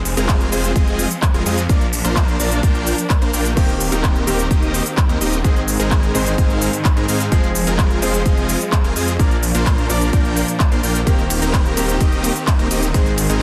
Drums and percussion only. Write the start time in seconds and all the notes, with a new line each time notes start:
0.05 open hi-hat, shaker
0.17 closed hi-hat, shaker
0.29 kick, clap, closed hi-hat, shaker
0.41 closed hi-hat
0.52 open hi-hat, shaker
0.64 closed hi-hat, shaker
0.76 kick, closed hi-hat, shaker
0.87 closed hi-hat
0.99 open hi-hat, shaker
1.11 closed hi-hat, shaker
1.22 kick, clap, closed hi-hat, shaker
1.34 closed hi-hat
1.46 open hi-hat, shaker
1.58 closed hi-hat, shaker
1.69 kick, closed hi-hat, shaker
1.81 closed hi-hat
1.93 open hi-hat, shaker
2.05 closed hi-hat, shaker
2.16 kick, clap, closed hi-hat, shaker
2.28 closed hi-hat
2.40 open hi-hat, shaker
2.51 closed hi-hat, shaker
2.63 kick, closed hi-hat, shaker
2.75 closed hi-hat
2.87 open hi-hat, shaker
2.98 closed hi-hat, shaker
3.10 kick, clap, closed hi-hat, shaker
3.22 closed hi-hat
3.33 open hi-hat, shaker
3.45 closed hi-hat, shaker
3.57 kick, closed hi-hat, crash, shaker
3.69 closed hi-hat
3.80 open hi-hat, shaker
3.92 closed hi-hat, shaker
4.04 kick, clap, closed hi-hat, shaker
4.16 closed hi-hat
4.27 open hi-hat, shaker
4.39 closed hi-hat, shaker
4.51 kick, closed hi-hat, shaker
4.62 closed hi-hat
4.74 open hi-hat, shaker
4.86 closed hi-hat, shaker
4.97 kick, clap, closed hi-hat, shaker
5.09 closed hi-hat
5.21 open hi-hat, shaker
5.33 closed hi-hat, shaker
5.45 kick, closed hi-hat, shaker
5.56 closed hi-hat
5.68 open hi-hat, shaker
5.80 closed hi-hat, shaker
5.91 kick, clap, closed hi-hat, shaker
6.03 closed hi-hat
6.15 open hi-hat, shaker
6.26 closed hi-hat, shaker
6.38 kick, closed hi-hat, shaker
6.50 closed hi-hat
6.62 open hi-hat, shaker
6.73 closed hi-hat, shaker
6.85 kick, clap, closed hi-hat, shaker
6.97 closed hi-hat
7.08 open hi-hat, shaker
7.20 closed hi-hat, shaker
7.32 kick, closed hi-hat, shaker
7.44 closed hi-hat
7.55 open hi-hat, shaker
7.67 closed hi-hat, shaker
7.79 kick, clap, closed hi-hat, shaker
7.90 closed hi-hat
8.02 open hi-hat, shaker
8.14 closed hi-hat, shaker
8.26 kick, closed hi-hat, shaker
8.37 closed hi-hat
8.49 open hi-hat, shaker
8.61 closed hi-hat, shaker
8.72 kick, clap, closed hi-hat, shaker
8.84 closed hi-hat
8.96 open hi-hat, shaker
9.08 closed hi-hat, shaker
9.20 kick, closed hi-hat, shaker
9.31 closed hi-hat
9.43 open hi-hat, shaker
9.55 closed hi-hat, shaker
9.66 kick, clap, closed hi-hat, shaker
9.78 closed hi-hat
9.90 open hi-hat, shaker
10.01 closed hi-hat, shaker
10.13 kick, closed hi-hat, shaker
10.25 closed hi-hat
10.37 open hi-hat, shaker
10.48 closed hi-hat, shaker
10.60 kick, clap, closed hi-hat, shaker
10.72 closed hi-hat
10.83 open hi-hat, shaker
10.95 closed hi-hat, shaker
11.07 kick, closed hi-hat, ride, shaker
11.19 closed hi-hat
11.30 open hi-hat, ride, shaker
11.42 closed hi-hat, shaker
11.54 kick, clap, closed hi-hat, ride, shaker
11.65 closed hi-hat
11.77 open hi-hat, ride, shaker
11.89 closed hi-hat, shaker
12.01 kick, closed hi-hat, ride, shaker
12.12 closed hi-hat
12.24 open hi-hat, ride, shaker
12.36 closed hi-hat, shaker
12.47 kick, clap, closed hi-hat, ride, shaker
12.59 closed hi-hat
12.71 open hi-hat, ride, shaker
12.83 closed hi-hat, shaker
12.94 kick, closed hi-hat, ride, shaker
13.06 closed hi-hat
13.18 open hi-hat, ride, shaker
13.30 closed hi-hat, shaker